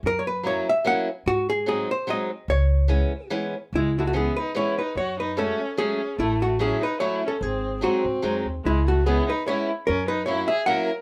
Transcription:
0.03 upright bass F#2
0.07 hollow-body jazz guitar A#4
0.19 hollow-body jazz guitar C#5
0.27 hollow-body jazz guitar B4
0.43 steel-string acoustic guitar F#3 A#3 C#4 E4, hollow-body jazz guitar C#5
0.69 hollow-body jazz guitar E5
0.85 steel-string acoustic guitar F#3 A#3 C#4 E4, hollow-body jazz guitar F#5
1.26 upright bass G#2, hollow-body jazz guitar F#4
1.50 hollow-body jazz guitar G#4
1.66 steel-string acoustic guitar F#3 G#3 C4 D#4, hollow-body jazz guitar G#4
1.91 hollow-body jazz guitar C5
2.07 steel-string acoustic guitar F#3 G#3 C4 D#4, hollow-body jazz guitar D#5
2.48 upright bass C#2, hollow-body jazz guitar C#5
2.88 steel-string acoustic guitar E3 G#3 B3 C#4
3.30 steel-string acoustic guitar E3 G#3 B3 C#4
3.73 upright bass C#2, violin G#3, hollow-body jazz guitar E4
3.98 violin G#3 A3, hollow-body jazz guitar E4 F#4
4.07 violin A3, hollow-body jazz guitar F#4
4.13 steel-string acoustic guitar E3 G#3 B3 C#4, violin B3, hollow-body jazz guitar G#4
4.37 violin D#4, hollow-body jazz guitar B4
4.55 steel-string acoustic guitar E3 G#3 B3 C#4, violin E4, hollow-body jazz guitar C#5
4.79 violin D#4, hollow-body jazz guitar B4
4.95 upright bass F#2, violin F#4, hollow-body jazz guitar C#5
5.20 violin D#4, hollow-body jazz guitar B4
5.37 steel-string acoustic guitar F#3 G#3 A3 C#4, violin C#4, hollow-body jazz guitar A4
5.77 steel-string acoustic guitar F#3 G#3 A3 C#4, violin C#4, hollow-body jazz guitar G#4
6.18 upright bass A1, violin A3, hollow-body jazz guitar E4
6.42 violin A3, hollow-body jazz guitar F#4
6.59 steel-string acoustic guitar F#3 A3 C#4 E4, violin C#4, hollow-body jazz guitar G#4
6.82 violin D#4, hollow-body jazz guitar B4
7.00 steel-string acoustic guitar F#3 A3 C#4 E4, violin E4, hollow-body jazz guitar C#5
7.27 violin C#4, hollow-body jazz guitar A4
7.41 upright bass G#1, violin C4, hollow-body jazz guitar G#4
7.81 steel-string acoustic guitar F#3 G#3 C4 D#4, violin C4, hollow-body jazz guitar F#4
8.04 upright bass G#2
8.22 upright bass F#2, steel-string acoustic guitar F#3 G#3 C4 D#4
8.46 upright bass D#2
8.65 upright bass C#2, violin G#3, hollow-body jazz guitar E4
8.87 violin A3, hollow-body jazz guitar F#4
9.06 steel-string acoustic guitar G#3 B3 C#4 E4, violin B3, hollow-body jazz guitar G#4
9.29 violin D#4, hollow-body jazz guitar B4
9.48 steel-string acoustic guitar G#3 B3 C#4 E4, violin E4, hollow-body jazz guitar C#5
9.87 upright bass F#2, violin C#4, hollow-body jazz guitar A#4
10.08 violin D#4, hollow-body jazz guitar B4
10.26 steel-string acoustic guitar F#3 A#3 C#4 E4, violin E4, hollow-body jazz guitar C#5
10.48 violin G#4, hollow-body jazz guitar E5
10.66 steel-string acoustic guitar F#3 A#3 C#4 E4, violin A#4, hollow-body jazz guitar F#5

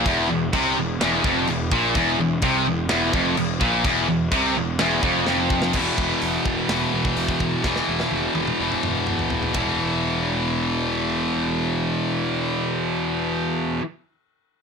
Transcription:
0.06 picked electric bass E1, distorted electric guitar E2, kick, china
0.30 picked electric bass E1, distorted electric guitar E2
0.53 picked electric bass C2, distorted electric guitar C3, kick, china
0.78 picked electric bass E1, distorted electric guitar E2
1.01 picked electric bass E1, distorted electric guitar E2, snare, china
1.24 picked electric bass F1, distorted electric guitar F2, kick
1.47 picked electric bass E1, distorted electric guitar E2, china
1.72 picked electric bass A#1, distorted electric guitar A#2, kick
1.95 picked electric bass E1, distorted electric guitar E2, kick, china
2.20 picked electric bass E1, distorted electric guitar E2
2.42 picked electric bass C2, distorted electric guitar C3, kick, china
2.67 picked electric bass E1, distorted electric guitar E2
2.89 picked electric bass E1, distorted electric guitar E2, snare, china
3.13 picked electric bass F1, distorted electric guitar F2, kick
3.37 picked electric bass E1, distorted electric guitar E2, china
3.61 picked electric bass A#1, distorted electric guitar A#2, kick
3.85 picked electric bass E1, distorted electric guitar E2, kick, china
4.08 picked electric bass E1, distorted electric guitar E2
4.31 picked electric bass C2, distorted electric guitar C3, kick, china
4.56 picked electric bass E1, distorted electric guitar E2
4.79 picked electric bass E1, distorted electric guitar E2, snare, china
5.03 picked electric bass F1, distorted electric guitar F2, kick
5.27 picked electric bass F1, distorted electric guitar F2, snare
5.50 kick
5.62 snare
5.73 picked electric bass E1, distorted electric guitar E2 B2 E3, kick, crash
5.98 picked electric bass E1, kick
6.22 picked electric bass E1, open hi-hat
6.46 picked electric bass E1, kick
6.69 picked electric bass E1, distorted electric guitar E2 B2 E3, snare, open hi-hat
6.94 picked electric bass E1
7.05 kick
7.17 picked electric bass E1, open hi-hat
7.28 kick
7.40 picked electric bass E1, kick
7.64 picked electric bass E1, distorted electric guitar E2 B2 E3, kick, snare
7.76 snare
7.89 picked electric bass E1
8.00 snare
8.11 picked electric bass E1, high tom
8.35 picked electric bass E1, high tom
8.47 mid tom
8.60 picked electric bass E1, distorted electric guitar E2 B2 E3
8.72 mid tom
8.83 picked electric bass E1, mid tom
9.07 picked electric bass E1, mid tom
9.19 floor tom
9.30 picked electric bass E1, floor tom
9.43 floor tom
9.54 picked electric bass E1, distorted electric guitar E2 B2, kick, floor tom, ride bell
9.59 distorted electric guitar E3

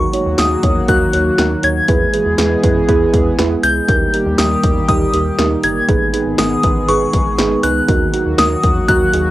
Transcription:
Already playing: analog synth pad D#3 F#3 A#3 F#4, synth bell C#6
0.14 synth keys D#4 F#4 C#5, closed hi-hat
0.26 analog synth bass D#2
0.38 analog synth bass D#2, synth keys D#4 F#4 G#4, synth bell D#6, snare, closed hi-hat
0.63 analog synth bass E2, synth keys D#4 F#4 C#5, kick, closed hi-hat
0.88 analog synth bass D#2, synth keys D#4 F#4 A#4, synth bell F#6, kick, closed hi-hat
1.13 analog synth bass D#2, synth keys D#4 F#4 C#5, closed hi-hat
1.38 analog synth bass D#2, synth keys D#4 F#4 A#4, snare, closed hi-hat
1.63 analog synth bass D#2, synth keys D#4 F#4 C#5, synth bell G#6, closed hi-hat
1.88 analog synth bass E2, analog synth pad E3 G#3 B3 G#4, synth keys E4 G#4 B4, kick, closed hi-hat
2.14 synth keys E4 G#4 B4, closed hi-hat
2.26 analog synth bass E2
2.38 analog synth bass E2, synth keys E4 G#4 B4, snare, closed hi-hat
2.63 analog synth bass F#2, synth keys E4 G#4 B4, kick, closed hi-hat
2.88 analog synth bass E2, synth keys E4 G#4 B4, kick, closed hi-hat
3.14 analog synth bass E2, synth keys E4 G#4 B4, kick, closed hi-hat
3.38 analog synth bass E2, synth keys E4 G#4 B4, snare, closed hi-hat
3.63 analog synth bass C#2, synth keys E4 G#4 B4, synth bell G6, closed hi-hat
3.89 analog synth bass D#2, analog synth pad D#3 G3 A#3 G4, synth keys D#4 G4 A#4, kick, closed hi-hat
4.14 synth keys D#4 G4 A#4, closed hi-hat
4.26 analog synth bass D#2
4.38 analog synth bass D#2, synth keys D#4 G4 A#4, synth bell D#6, snare, closed hi-hat
4.64 analog synth bass E2, synth keys D#4 G4 A#4, kick, closed hi-hat
4.88 analog synth bass D#2, synth keys D#4 G4 A#4, synth bell D#6, kick, closed hi-hat
5.14 analog synth bass D#2, synth keys D#4 G4 A#4, closed hi-hat
5.38 analog synth bass D#2, synth keys D#4 G4 A#4, snare, closed hi-hat
5.63 analog synth bass G1, synth keys D#4 G4 A#4, synth bell G#6, closed hi-hat
5.88 analog synth bass G#1, analog synth pad G#3 B3 G#4, synth keys D#4 G#4 B4, kick, closed hi-hat
6.14 synth keys D#4 G#4 B4, closed hi-hat
6.26 analog synth bass G#1
6.38 analog synth bass G#1, synth keys D#4 G#4 A#4, synth bell D#6, snare, closed hi-hat
6.63 analog synth bass A#1, synth keys D#4 G#4 B4, kick, closed hi-hat
6.88 analog synth bass G#1, synth keys D#4 G#4 B4, synth bell C#6, closed hi-hat
7.13 analog synth bass G#1, synth keys D#4 G#4 B4, kick, closed hi-hat
7.38 analog synth bass G#1, synth keys D#4 G#4 B4, snare, closed hi-hat
7.63 analog synth bass C#2, synth keys D#4 G#4 B4, synth bell F#6, closed hi-hat
7.88 analog synth bass D#2, analog synth pad F#3 A#3 F#4, synth keys D#4 F#4 A#4, kick, closed hi-hat
8.13 synth keys D#4 F#4 A#4, closed hi-hat
8.26 analog synth bass D#2
8.38 analog synth bass D#2, synth keys D#4 F#4 A#4, synth bell D#6, snare, closed hi-hat
8.63 analog synth bass E2, synth keys D#4 F#4 A#4, kick, closed hi-hat
8.88 analog synth bass D#2, synth keys D#4 F#4 A#4, synth bell F#6, kick, closed hi-hat
9.13 analog synth bass D#2, synth keys D#4 F#4 G#4, closed hi-hat

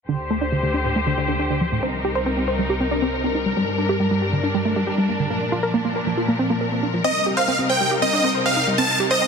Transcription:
0.09 string section D2 D3 G4 C5, synth arpeggio sound D3
0.30 synth arpeggio sound A3
0.41 synth arpeggio sound D4
0.52 synth arpeggio sound D3
0.63 synth arpeggio sound D3
0.74 synth arpeggio sound D4
0.85 synth arpeggio sound A2
0.96 synth arpeggio sound A3
1.07 synth arpeggio sound D3
1.18 synth arpeggio sound D3
1.28 synth arpeggio sound D3
1.39 synth arpeggio sound D4
1.50 synth arpeggio sound D3
1.61 synth arpeggio sound F3
1.72 synth arpeggio sound A2
1.83 string section C2 C3 D#4 A#4, synth arpeggio sound C4
2.04 synth arpeggio sound G4
2.15 synth arpeggio sound C5
2.26 synth arpeggio sound C4
2.37 synth arpeggio sound C4
2.48 synth arpeggio sound C5
2.59 synth arpeggio sound G3
2.70 synth arpeggio sound G4
2.80 synth arpeggio sound C4
2.91 synth arpeggio sound D4
3.02 synth arpeggio sound C4
3.13 synth arpeggio sound C5
3.24 synth arpeggio sound C4
3.35 synth arpeggio sound D#4
3.46 synth arpeggio sound G3
3.56 string section G2 G3 D4, synth arpeggio sound G3
3.78 synth arpeggio sound D4
3.89 synth arpeggio sound G4
4.00 synth arpeggio sound G3
4.11 synth arpeggio sound G3
4.22 synth arpeggio sound G4
4.33 synth arpeggio sound D3
4.43 synth arpeggio sound D4
4.54 synth arpeggio sound G3
4.65 synth arpeggio sound A3
4.76 synth arpeggio sound G3
4.87 synth arpeggio sound G4
4.98 synth arpeggio sound G3
5.09 synth arpeggio sound A#3
5.20 synth arpeggio sound D3
5.30 string section A#2 F3 A#4, synth arpeggio sound A#3
5.52 synth arpeggio sound F4
5.63 synth arpeggio sound A#4
5.74 synth arpeggio sound A#3
5.85 synth arpeggio sound A#3
5.96 synth arpeggio sound A#4
6.07 synth arpeggio sound F3
6.17 synth arpeggio sound F4
6.28 synth arpeggio sound A#3
6.39 synth arpeggio sound C4
6.50 synth arpeggio sound A#3
6.61 synth arpeggio sound A#4
6.72 synth arpeggio sound A#3
6.83 synth arpeggio sound D4
6.94 synth arpeggio sound F3
7.04 string section C3 G3 D#4, synth arpeggio sound C4, supersaw synth D#5
7.26 synth arpeggio sound G4
7.37 synth arpeggio sound C5, supersaw synth F5
7.48 synth arpeggio sound C4
7.59 synth arpeggio sound C4
7.69 synth arpeggio sound C5, supersaw synth G5
7.81 synth arpeggio sound G3
7.91 synth arpeggio sound G4
8.02 synth arpeggio sound C4, supersaw synth D#5
8.13 synth arpeggio sound D4
8.24 synth arpeggio sound C4
8.35 synth arpeggio sound C5
8.46 synth arpeggio sound C4, supersaw synth F5
8.56 synth arpeggio sound D#4
8.67 synth arpeggio sound G3
8.78 synth arpeggio sound C4, supersaw synth A5
9.00 synth arpeggio sound G4
9.11 synth arpeggio sound C5, supersaw synth D#5
9.22 synth arpeggio sound C4

